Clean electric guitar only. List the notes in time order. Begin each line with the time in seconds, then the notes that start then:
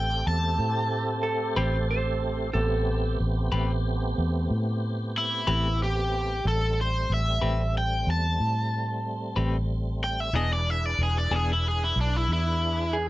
1.56 A3 C4 G4 B4
3.52 A3 C4 G4 B4
5.47 A3 C4 G4 B4
7.42 A3 C4 G4 B4
9.36 A3 C4 G4 B4
10.34 E3 B3 D4 G#4
11.31 E3 B3 D4 G#4